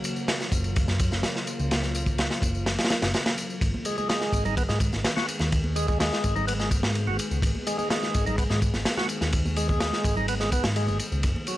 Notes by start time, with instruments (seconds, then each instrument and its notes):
Already playing: ambient pad C#3 F#3 A#3 F4
0.04 ride, tambourine
0.16 tambourine
0.28 snare, ride, tambourine
0.40 snare, tambourine
0.52 picked electric bass F#1, kick, ride, tambourine
0.64 ride, tambourine
0.76 kick, ride, tambourine
0.88 picked electric bass F#2, snare, tambourine
0.99 kick, ride, tambourine
1.12 picked electric bass F#1, snare, tambourine
1.23 snare, ride, tambourine
1.36 snare
1.47 ride, tambourine
1.59 picked electric bass C#2, tambourine
1.71 snare, ride, tambourine
1.83 snare, tambourine
1.95 ride, tambourine
2.06 kick, tambourine
2.18 snare, ride, tambourine
2.30 snare, tambourine
2.42 picked electric bass F#1, kick, ride, tambourine
2.55 tambourine
2.66 snare, ride, tambourine
2.78 snare, ride, tambourine
2.84 snare, ride
2.90 snare, ride, tambourine
3.02 picked electric bass F#1, snare, ride, tambourine
3.14 snare, ride, tambourine
3.26 snare, ride, tambourine
3.38 ride, tambourine
3.50 tambourine
3.61 picked electric bass G#1, ambient pad D#3 G#3 B3 G#4, kick, ride, tambourine
3.74 high conga
3.85 tonewheel organ G#3, ride, tambourine
3.98 tonewheel organ G#3, tambourine, high conga
4.09 tonewheel organ G#3, snare, ride, tambourine
4.21 snare, tambourine
4.33 picked electric bass G#1, kick, ride, tambourine
4.45 tonewheel organ D#4, ride, tambourine, low conga
4.57 tonewheel organ B3, kick, ride, tambourine
4.69 picked electric bass G#2, tonewheel organ G#3, snare, tambourine, muted conga
4.80 kick, ride, tambourine
4.92 picked electric bass G#1, snare, tambourine, muted conga, high conga
5.04 snare, ride, tambourine
5.16 tonewheel organ F#4, snare, high conga
5.29 ride, tambourine
5.39 picked electric bass D#2, snare, tambourine, muted conga
5.52 kick, ride, tambourine
5.64 high conga
5.76 tonewheel organ G#3, ride, tambourine
5.88 tonewheel organ G#3, kick, tambourine, high conga
6.00 tonewheel organ G#3, snare, ride, tambourine
6.12 snare, tambourine
6.24 picked electric bass G#1, kick, ride, tambourine
6.36 tonewheel organ D#4, tambourine, low conga
6.47 tonewheel organ B3, ride, tambourine
6.59 tonewheel organ G#3, snare, tambourine
6.71 kick, ride, tambourine
6.83 picked electric bass G#2, snare, tambourine, high conga
6.95 ride, tambourine
7.07 picked electric bass G#1, tonewheel organ F#4, high conga
7.19 ride, tambourine, muted conga
7.31 picked electric bass C#2, tambourine
7.42 picked electric bass G#1, kick, ride, tambourine
7.55 high conga
7.67 tonewheel organ G#3, ride, tambourine
7.78 tonewheel organ G#3, tambourine, high conga
7.90 tonewheel organ G#3, snare, ride, tambourine
8.03 snare, tambourine
8.14 picked electric bass G#1, kick, ride, tambourine
8.26 tonewheel organ D#4, ride, tambourine, low conga
8.38 tonewheel organ B3, kick, ride, tambourine
8.50 picked electric bass G#2, tonewheel organ G#3, snare, tambourine, muted conga
8.62 kick, ride, tambourine
8.74 picked electric bass G#1, snare, tambourine, muted conga, high conga
8.85 snare, ride, tambourine
8.97 tonewheel organ F#4, snare, high conga
9.09 ride, tambourine
9.21 picked electric bass D#2, snare, tambourine, muted conga
9.33 kick, ride, tambourine
9.45 tambourine, high conga
9.56 tonewheel organ G#3, ride, tambourine
9.69 tonewheel organ G#3, kick, high conga
9.80 tonewheel organ G#3, snare, ride, tambourine
9.93 snare, tambourine
10.04 picked electric bass G#1, kick, ride, tambourine
10.16 tonewheel organ D#4, tambourine, low conga
10.28 tonewheel organ B3, ride, tambourine
10.40 tonewheel organ G#3, snare, tambourine
10.52 tonewheel organ B3, kick, ride, tambourine
10.64 picked electric bass G#2, snare, tambourine, high conga
10.76 tonewheel organ G#3, ride, tambourine
10.87 picked electric bass G#1, tonewheel organ G#3, tambourine, high conga
10.99 ride, tambourine, muted conga
11.12 picked electric bass C#2, tambourine
11.23 picked electric bass F#1, ambient pad C#3 F#3 A#3 F#4, kick, ride, tambourine
11.36 high conga
11.47 tonewheel organ F#3, ride, tambourine